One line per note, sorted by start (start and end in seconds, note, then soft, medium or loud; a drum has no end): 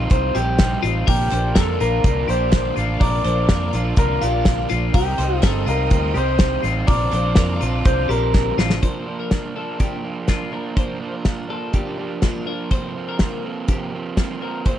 0.00 0.11 G3 medium
0.00 0.11 C4 medium
0.00 0.11 D#4 medium
0.00 1.03 D#4 medium
0.00 0.35 F4 medium
0.00 1.03 C5 medium
0.00 1.03 G5 medium
0.10 0.32 C2 loud
0.10 0.35 C3 medium
0.10 0.35 G3 medium
0.10 0.34 C4 medium
0.10 0.33 D#4 medium
0.10 0.36 C5 loud
0.10 kick loud
0.10 hi-hat pedal medium
0.10 open hi-hat medium
0.34 0.76 A#1 medium
0.34 0.59 G3 soft
0.34 0.60 C4 soft
0.34 0.59 D#4 soft
0.34 0.80 G4 medium
0.34 hi-hat pedal medium
0.34 open hi-hat medium
0.58 0.84 C3 medium
0.58 0.84 G3 medium
0.58 0.84 C4 medium
0.58 0.82 D#4 medium
0.58 kick loud
0.58 snare medium
0.58 clap medium
0.58 hi-hat pedal medium
0.58 open hi-hat medium
0.83 1.04 A1 medium
0.83 1.08 G3 soft
0.83 1.08 C4 soft
0.83 1.08 D#4 medium
0.83 1.07 F4 medium
0.83 hi-hat pedal medium
0.83 open hi-hat medium
1.05 1.28 A#1 loud
1.05 1.32 A#2 medium
1.05 1.32 D3 medium
1.05 1.32 F3 medium
1.05 1.31 A#3 medium
1.05 1.31 D4 medium
1.05 1.58 G4 medium
1.05 4.90 A#4 medium
1.05 1.31 A#4 loud
1.05 4.91 D5 medium
1.05 4.90 F5 medium
1.05 4.90 D6 medium
1.05 kick loud
1.05 hi-hat pedal medium
1.05 open hi-hat medium
1.31 1.53 A#1 medium
1.31 1.55 F3 soft
1.31 1.56 A#3 soft
1.31 1.56 D4 medium
1.31 1.55 C5 medium
1.31 clap medium
1.31 hi-hat pedal medium
1.31 open hi-hat medium
1.55 1.77 F2 medium
1.55 1.80 A#2 medium
1.55 1.81 D3 medium
1.55 1.81 F3 medium
1.55 1.80 A#3 medium
1.55 1.79 D4 medium
1.55 1.81 A4 medium
1.55 1.80 A#4 medium
1.55 kick loud
1.55 snare loud
1.55 clap medium
1.55 hi-hat pedal medium
1.55 open hi-hat medium
1.80 2.01 A#1 medium
1.80 2.03 F3 soft
1.80 2.04 A#3 medium
1.80 2.04 D4 medium
1.80 2.26 F4 medium
1.80 2.29 A#4 loud
1.80 hi-hat pedal medium
1.80 open hi-hat medium
2.04 2.25 C2 medium
2.04 2.29 D3 medium
2.04 2.29 F3 medium
2.04 2.28 A#3 medium
2.04 2.26 D4 medium
2.04 kick loud
2.04 hi-hat pedal medium
2.04 open hi-hat medium
2.28 2.70 A#1 medium
2.28 2.52 F3 soft
2.28 2.52 A#3 soft
2.28 2.52 D4 medium
2.28 2.74 G4 medium
2.28 2.74 C5 loud
2.28 hi-hat pedal medium
2.28 open hi-hat medium
2.52 2.77 A#2 medium
2.52 2.77 D3 medium
2.52 2.77 F3 medium
2.52 2.76 A#3 medium
2.52 2.75 D4 medium
2.52 kick loud
2.52 snare medium
2.52 clap medium
2.52 hi-hat pedal medium
2.52 open hi-hat medium
2.76 2.98 A1 medium
2.76 3.00 F3 soft
2.76 3.00 A#3 medium
2.76 3.01 D4 medium
2.76 3.01 F4 medium
2.76 hi-hat pedal medium
2.76 open hi-hat medium
3.00 3.22 A#1 loud
3.00 3.25 A#2 medium
3.00 3.25 D3 medium
3.00 3.25 F3 medium
3.00 3.24 A#3 medium
3.00 3.23 D4 medium
3.00 3.24 A#4 loud
3.00 3.70 D5 loud
3.00 kick loud
3.00 hi-hat pedal medium
3.00 open hi-hat medium
3.24 3.46 A#1 loud
3.24 3.48 F3 soft
3.24 3.49 A#3 soft
3.24 3.49 D4 medium
3.24 3.49 C5 medium
3.24 clap medium
3.24 hi-hat pedal medium
3.24 open hi-hat medium
3.48 3.73 A#2 medium
3.48 3.74 D3 medium
3.48 3.74 F3 medium
3.48 3.73 A#3 medium
3.48 3.72 D4 medium
3.48 3.74 A#4 medium
3.48 kick loud
3.48 snare loud
3.48 clap medium
3.48 hi-hat pedal medium
3.48 open hi-hat medium
3.73 3.94 A#1 medium
3.73 3.96 F3 soft
3.73 3.96 A#3 medium
3.73 3.97 D4 medium
3.73 4.21 F4 medium
3.73 hi-hat pedal medium
3.73 open hi-hat medium
3.96 4.18 C2 medium
3.96 4.21 D3 medium
3.96 4.22 F3 medium
3.96 4.21 A#3 medium
3.96 4.20 D4 medium
3.96 4.23 A#4 loud
3.96 kick loud
3.96 hi-hat pedal medium
3.96 open hi-hat medium
4.21 4.64 A#1 medium
4.21 4.44 F3 soft
4.21 4.45 A#3 soft
4.21 4.45 D4 medium
4.21 4.67 F4 medium
4.21 4.68 G4 medium
4.21 hi-hat pedal medium
4.21 open hi-hat medium
4.45 4.70 A#2 medium
4.45 4.70 D3 medium
4.45 4.70 F3 medium
4.45 4.70 A#3 medium
4.45 4.69 D4 medium
4.45 kick loud
4.45 snare loud
4.45 clap medium
4.45 hi-hat pedal medium
4.45 open hi-hat medium
4.69 4.92 A#1 medium
4.69 4.94 F3 soft
4.69 4.95 A#3 medium
4.69 4.95 D4 medium
4.69 4.95 F4 medium
4.69 hi-hat pedal medium
4.69 open hi-hat medium
4.94 5.15 C2 loud
4.94 5.19 C3 medium
4.94 5.19 G3 medium
4.94 5.18 C4 medium
4.94 5.16 D#4 medium
4.94 5.45 G4 medium
4.94 5.18 A#4 loud
4.94 8.78 C5 medium
4.94 6.87 D#5 medium
4.94 6.87 G5 medium
4.94 6.87 D#6 medium
4.94 kick loud
4.94 hi-hat pedal medium
4.94 open hi-hat medium
5.18 5.39 C2 loud
5.18 5.42 G3 soft
5.18 5.43 C4 soft
5.18 5.43 D#4 medium
5.18 5.42 C5 medium
5.18 clap medium
5.18 hi-hat pedal medium
5.18 open hi-hat medium
5.42 5.64 G1 medium
5.42 5.67 C3 medium
5.42 5.68 G3 medium
5.42 5.68 C4 medium
5.42 5.66 D#4 medium
5.42 5.67 A4 medium
5.42 5.67 A#4 medium
5.42 kick loud
5.42 snare loud
5.42 clap medium
5.42 hi-hat pedal medium
5.42 open hi-hat medium
5.66 5.88 C2 medium
5.66 5.90 G3 soft
5.66 5.91 C4 medium
5.66 5.92 D#4 medium
5.66 6.13 F4 medium
5.66 6.17 A#4 loud
5.66 hi-hat pedal medium
5.66 open hi-hat medium
5.90 6.12 D2 medium
5.90 6.15 C3 medium
5.90 6.16 G3 medium
5.90 6.15 C4 medium
5.90 6.14 D#4 medium
5.90 kick loud
5.90 hi-hat pedal medium
5.90 open hi-hat medium
6.14 6.57 C2 medium
6.14 6.40 G3 soft
6.14 6.40 C4 soft
6.14 6.40 D#4 medium
6.14 6.61 G4 medium
6.14 6.62 C5 loud
6.14 hi-hat pedal medium
6.14 open hi-hat medium
6.39 6.64 C3 medium
6.39 6.65 G3 medium
6.39 6.65 C4 medium
6.39 6.63 D#4 medium
6.39 kick loud
6.39 snare loud
6.39 clap medium
6.39 hi-hat pedal medium
6.39 open hi-hat medium
6.63 6.85 A1 medium
6.63 6.88 C4 medium
6.63 6.89 D#4 medium
6.63 6.88 F4 medium
6.63 hi-hat pedal medium
6.63 open hi-hat medium
6.67 6.88 G3 soft
6.87 7.09 A#1 loud
6.87 7.13 A#2 medium
6.87 7.13 D3 medium
6.87 7.13 F3 medium
6.87 7.13 C4 medium
6.87 7.11 D4 medium
6.87 7.12 A#4 loud
6.87 7.57 D5 loud
6.87 8.80 F5 medium
6.87 8.80 A#5 medium
6.87 8.80 D6 medium
6.87 kick loud
6.87 hi-hat pedal medium
6.87 open hi-hat medium
7.12 7.33 A#1 loud
7.12 7.36 F3 soft
7.12 7.37 C4 soft
7.12 7.37 D4 medium
7.12 7.36 C5 medium
7.12 clap medium
7.12 hi-hat pedal medium
7.12 open hi-hat medium
7.35 7.58 F2 medium
7.35 7.61 A#2 medium
7.35 7.61 D3 medium
7.35 7.62 F3 medium
7.35 7.61 C4 medium
7.35 7.60 D4 medium
7.35 7.61 A#4 medium
7.35 kick loud
7.35 snare loud
7.35 clap medium
7.35 hi-hat pedal medium
7.35 open hi-hat medium
7.61 7.82 A#1 medium
7.61 7.85 F3 medium
7.61 7.86 C4 medium
7.61 7.86 D4 medium
7.61 8.07 F4 medium
7.61 hi-hat pedal medium
7.61 open hi-hat medium
7.85 8.06 C2 medium
7.85 8.10 D3 medium
7.85 8.10 F3 medium
7.85 8.09 C4 medium
7.85 8.07 D4 medium
7.85 8.08 C5 loud
7.85 kick loud
7.85 hi-hat pedal medium
7.85 open hi-hat medium
8.09 8.51 A#1 medium
8.09 8.32 F3 soft
8.09 8.33 C4 soft
8.09 8.34 D4 soft
8.09 8.55 G4 medium
8.09 8.55 A#4 medium
8.09 hi-hat pedal medium
8.09 open hi-hat medium
8.33 8.58 A#2 medium
8.33 8.58 D3 medium
8.33 8.58 F3 medium
8.33 8.57 C4 medium
8.33 8.56 D4 medium
8.33 kick loud
8.33 snare medium
8.33 clap medium
8.57 8.79 A1 medium
8.57 8.82 F3 medium
8.57 8.82 C4 medium
8.57 8.82 D4 medium
8.57 8.83 F4 medium
8.57 snare medium
8.70 snare medium
8.82 9.07 A#2 medium
8.82 9.07 F3 medium
8.82 9.07 A#3 medium
8.82 9.05 D4 medium
8.82 9.17 C5 medium
8.82 kick medium
8.82 closed hi-hat medium
9.06 9.30 F3 soft
9.06 9.31 A#3 soft
9.06 9.31 D4 soft
9.20 9.54 A#4 medium
9.30 9.55 A#2 medium
9.30 9.56 F3 medium
9.30 9.55 A#3 medium
9.30 9.54 D4 medium
9.30 kick medium
9.30 snare medium
9.30 closed hi-hat medium
9.55 9.78 F3 soft
9.55 9.79 A#3 medium
9.55 9.79 D4 medium
9.55 9.80 A4 medium
9.78 10.03 A#2 medium
9.78 10.04 F3 medium
9.78 10.03 A#3 medium
9.78 10.01 D4 medium
9.78 10.26 G4 medium
9.78 kick loud
9.78 closed hi-hat medium
10.03 10.26 F3 soft
10.03 10.27 A#3 soft
10.03 10.28 D4 soft
10.27 10.52 A#2 medium
10.27 10.52 F3 medium
10.27 10.52 A#3 medium
10.27 10.50 D4 medium
10.27 10.53 F4 medium
10.27 kick medium
10.27 snare medium
10.27 closed hi-hat medium
10.51 10.75 F3 soft
10.51 10.76 A#3 soft
10.51 10.76 D4 medium
10.51 10.77 A#4 medium
10.75 11.00 A#2 medium
10.75 11.01 F3 medium
10.75 10.99 A#3 medium
10.75 10.98 D4 medium
10.75 11.14 C5 medium
10.75 kick loud
10.75 closed hi-hat medium
11.00 11.24 F3 soft
11.00 11.24 A#3 soft
11.00 11.25 D4 soft
11.14 11.48 A#4 medium
11.24 11.49 A#2 medium
11.24 11.50 F3 medium
11.24 11.49 A#3 medium
11.24 11.47 D4 medium
11.24 kick medium
11.24 snare medium
11.24 closed hi-hat medium
11.48 11.72 F3 soft
11.48 11.73 A#3 soft
11.48 11.74 D4 medium
11.48 11.74 A4 medium
11.73 11.98 A#2 medium
11.73 11.98 F3 medium
11.73 11.98 A#3 medium
11.73 11.97 D4 medium
11.73 12.23 G4 medium
11.73 kick medium
11.73 closed hi-hat medium
11.98 12.21 F3 soft
11.98 12.22 A#3 soft
11.98 12.23 D4 medium
12.22 12.47 A#2 medium
12.22 12.47 F3 medium
12.22 12.47 A#3 medium
12.22 12.45 D4 medium
12.22 12.47 F4 medium
12.22 kick medium
12.22 snare medium
12.22 closed hi-hat medium
12.46 12.70 F3 soft
12.46 12.70 A#3 soft
12.46 12.71 D4 medium
12.46 12.71 A#4 medium
12.70 12.95 F2 medium
12.70 12.95 C3 medium
12.70 12.95 F3 medium
12.70 12.95 A#3 medium
12.70 12.93 C4 medium
12.70 13.06 C5 medium
12.70 kick loud
12.70 closed hi-hat medium
12.95 13.19 F3 soft
12.95 13.20 A#3 soft
12.95 13.19 C4 medium
13.09 13.45 A#4 medium
13.19 13.44 C3 medium
13.19 13.44 F3 medium
13.19 13.44 A#3 medium
13.19 13.43 C4 medium
13.19 kick medium
13.19 snare medium
13.19 closed hi-hat medium
13.44 13.68 F3 soft
13.44 13.69 A#3 soft
13.44 13.68 C4 medium
13.44 13.69 A4 medium
13.68 13.93 F2 medium
13.68 13.94 C3 medium
13.68 13.93 F3 medium
13.68 13.93 A#3 medium
13.68 13.92 C4 medium
13.68 14.17 G4 medium
13.68 kick loud
13.68 closed hi-hat medium
13.93 14.17 F3 soft
13.93 14.17 A#3 soft
13.93 14.17 C4 soft
14.17 14.41 C3 medium
14.17 14.42 F3 medium
14.17 14.42 A#3 medium
14.17 14.40 C4 medium
14.17 14.42 F4 medium
14.17 kick medium
14.17 snare medium
14.17 closed hi-hat medium
14.41 14.65 F3 soft
14.41 14.66 A#3 soft
14.41 14.66 C4 medium
14.41 14.66 A#4 medium
14.65 14.79 F2 medium
14.65 14.79 C3 medium
14.65 14.79 F3 medium
14.65 14.79 A#3 medium
14.65 14.79 C4 medium
14.65 14.79 C5 medium
14.65 kick loud
14.65 closed hi-hat medium